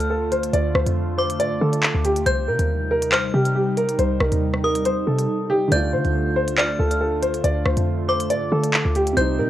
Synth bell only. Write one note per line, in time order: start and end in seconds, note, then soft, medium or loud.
1.19 2.22 D6 medium
2.26 3.09 G6 medium
3.13 3.53 F6 medium
4.64 5.68 D#6 medium
5.72 6.54 G6 loud
6.58 6.99 F6 medium
8.09 9.13 D6 medium
9.17 9.50 G6 medium